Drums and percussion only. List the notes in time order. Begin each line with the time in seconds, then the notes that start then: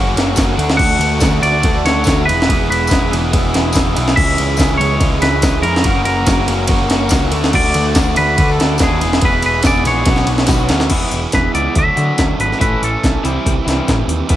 0.17 snare, ride
0.36 kick, snare, ride, tambourine
0.59 ride
0.70 snare
0.79 kick, crash
1.01 ride
1.20 kick, snare, ride, tambourine
1.43 ride
1.63 kick, ride
1.86 snare, ride
2.04 kick, snare, ride, tambourine
2.29 ride
2.42 snare
2.49 kick, ride
2.72 ride
2.87 kick, ride, tambourine
2.92 snare
3.13 ride
3.33 kick, ride
3.54 snare, ride
3.73 kick, snare, ride, tambourine
3.96 ride
4.08 snare
4.17 kick, crash
4.38 ride
4.57 kick, snare, ride, tambourine
4.81 ride
5.01 kick, ride
5.22 snare, ride
5.42 kick, snare, ride, tambourine
5.63 ride
5.76 snare
5.84 kick, ride
6.05 ride
6.26 kick, snare, ride, tambourine
6.48 ride
6.67 kick, ride
6.90 snare, ride
7.09 kick, snare, ride, tambourine
7.32 ride
7.44 snare
7.53 kick, crash
7.74 ride
7.95 kick, snare, ride, tambourine
8.16 ride
8.38 kick, ride
8.60 snare, ride
8.78 kick, snare, ride, tambourine
9.01 ride
9.13 snare
9.21 kick, ride
9.42 ride
9.63 kick, snare, ride, tambourine
9.85 ride
10.06 kick, snare, ride
10.16 snare
10.27 ride
10.38 snare
10.47 kick, snare, ride, tambourine
10.69 snare, ride
10.80 snare
10.90 kick, closed hi-hat, crash
11.11 closed hi-hat
11.32 kick, snare, closed hi-hat
11.55 closed hi-hat
11.75 kick, closed hi-hat
11.97 closed hi-hat
12.18 kick, snare, closed hi-hat
12.40 closed hi-hat
12.52 snare
12.61 kick, closed hi-hat
12.83 closed hi-hat
13.04 kick, snare, closed hi-hat
13.25 closed hi-hat
13.46 kick, closed hi-hat
13.68 snare, closed hi-hat
13.88 kick, snare, closed hi-hat
14.09 closed hi-hat
14.29 kick, closed hi-hat